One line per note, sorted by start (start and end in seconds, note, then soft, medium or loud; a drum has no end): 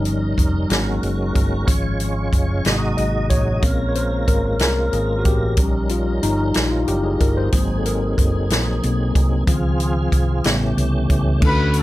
0.00 0.34 G1 loud
0.00 0.16 F3 soft
0.00 0.16 G3 soft
0.00 0.70 G3 medium
0.00 0.16 C#4 medium
0.00 0.68 C#4 soft
0.00 0.70 D#4 medium
0.00 1.32 D#4 medium
0.00 0.69 A#4 medium
0.05 closed hi-hat soft
0.38 0.68 F1 medium
0.38 kick medium
0.38 closed hi-hat medium
0.69 1.00 G#1 medium
0.69 1.13 F#3 medium
0.69 1.66 G#3 medium
0.69 1.14 A#3 soft
0.69 1.66 C#4 medium
0.69 1.14 C#4 medium
0.69 1.68 F#4 medium
0.69 1.68 A#4 medium
0.69 snare medium
0.69 closed hi-hat medium
1.03 1.33 F#1 medium
1.03 closed hi-hat soft
1.35 1.66 G1 medium
1.35 kick medium
1.35 closed hi-hat medium
1.67 2.29 G#1 loud
1.67 2.11 F3 soft
1.67 2.11 G#3 soft
1.67 2.65 G#3 medium
1.67 2.65 C#4 medium
1.67 2.11 C#4 medium
1.67 2.65 F4 medium
1.67 2.65 C#5 medium
1.67 kick loud
1.67 closed hi-hat medium
2.00 closed hi-hat soft
2.33 2.63 F#1 medium
2.33 kick medium
2.33 closed hi-hat medium
2.65 2.95 G#1 medium
2.65 3.59 C3 medium
2.65 3.59 F#3 soft
2.65 3.62 G#3 medium
2.65 3.59 A#3 soft
2.65 3.63 D#4 medium
2.65 3.63 F#4 medium
2.65 3.63 D#5 medium
2.65 snare medium
2.65 closed hi-hat medium
2.97 3.28 G#1 medium
2.97 3.31 D#5 medium
2.97 closed hi-hat soft
3.30 3.61 A1 medium
3.30 3.87 C#5 medium
3.30 kick medium
3.30 closed hi-hat medium
3.62 4.24 A#1 medium
3.62 5.54 G#3 soft
3.62 5.54 G#3 medium
3.62 5.54 A#3 soft
3.62 5.54 C4 medium
3.62 5.54 C#4 soft
3.62 5.54 F4 medium
3.62 5.54 A#4 medium
3.62 kick medium
3.62 closed hi-hat medium
3.89 3.96 C#5 medium
3.95 4.29 C5 medium
3.95 closed hi-hat medium
4.28 4.60 G#1 medium
4.28 4.58 A#4 medium
4.28 kick medium
4.28 closed hi-hat medium
4.59 4.91 C2 medium
4.59 4.94 A#4 medium
4.59 snare medium
4.59 closed hi-hat medium
4.93 5.23 G#1 medium
4.93 5.19 G#4 medium
4.93 closed hi-hat soft
5.19 5.26 F#4 medium
5.25 5.56 A1 medium
5.25 5.93 G4 medium
5.25 kick medium
5.25 closed hi-hat medium
5.57 6.19 A#1 medium
5.57 6.51 F3 soft
5.57 6.52 G3 soft
5.57 7.49 G3 medium
5.57 7.49 C#4 medium
5.57 6.52 C#4 medium
5.57 7.49 D#4 medium
5.57 7.49 A#4 medium
5.57 kick loud
5.57 closed hi-hat medium
5.89 6.05 F4 medium
5.89 closed hi-hat soft
6.23 6.53 G1 medium
6.23 6.69 D#4 medium
6.23 closed hi-hat medium
6.54 6.86 A#1 medium
6.54 snare medium
6.54 closed hi-hat medium
6.68 6.72 E4 medium
6.68 6.88 F4 medium
6.88 7.18 F#1 medium
6.88 7.05 G4 medium
6.88 closed hi-hat soft
7.04 7.21 G#4 medium
7.20 7.50 G1 medium
7.20 7.36 A#4 medium
7.20 kick medium
7.20 closed hi-hat medium
7.37 7.80 C5 medium
7.52 8.14 G#1 medium
7.52 7.96 F#3 medium
7.52 9.44 F#3 medium
7.52 7.96 A#3 soft
7.52 9.44 C4 medium
7.52 7.96 C4 medium
7.52 9.44 D#4 medium
7.52 9.44 G#4 medium
7.52 kick medium
7.52 closed hi-hat medium
7.78 7.85 A4 medium
7.86 9.44 A#4 medium
7.86 closed hi-hat medium
8.18 8.48 F#1 medium
8.18 kick medium
8.18 closed hi-hat medium
8.50 8.80 A#1 medium
8.50 snare loud
8.50 closed hi-hat medium
8.82 9.13 B1 medium
8.82 9.12 F#3 medium
8.82 9.12 A#3 soft
8.82 9.12 C4 medium
8.82 closed hi-hat soft
9.15 9.45 C2 loud
9.15 kick medium
9.15 closed hi-hat medium
9.46 10.08 C#2 loud
9.46 9.90 D#3 soft
9.46 9.91 F3 soft
9.46 10.45 F3 medium
9.46 9.91 C4 medium
9.46 10.45 C4 medium
9.46 10.45 F4 medium
9.46 10.45 G#4 medium
9.46 kick loud
9.46 closed hi-hat medium
9.80 closed hi-hat medium
10.12 10.42 C2 medium
10.12 kick medium
10.12 closed hi-hat medium
10.44 10.75 A1 medium
10.44 10.88 C#3 medium
10.44 11.42 E3 medium
10.44 10.89 G3 soft
10.44 11.42 A3 medium
10.44 10.89 B3 medium
10.44 11.42 C#4 medium
10.44 11.42 G4 medium
10.44 snare loud
10.44 closed hi-hat medium
10.77 11.07 C2 medium
10.77 closed hi-hat soft
11.10 11.40 C#2 medium
11.10 kick medium
11.10 closed hi-hat medium
11.41 11.83 D2 loud
11.41 11.83 D3 medium
11.41 11.83 A3 medium
11.41 11.83 C#4 medium
11.41 11.83 D4 medium
11.41 11.50 E4 medium
11.41 11.83 A4 medium
11.41 kick loud
11.41 crash loud
11.46 11.83 F#4 medium
11.46 11.75 B4 loud
11.51 11.83 F#4 medium
11.73 closed hi-hat medium
11.79 11.83 A4 medium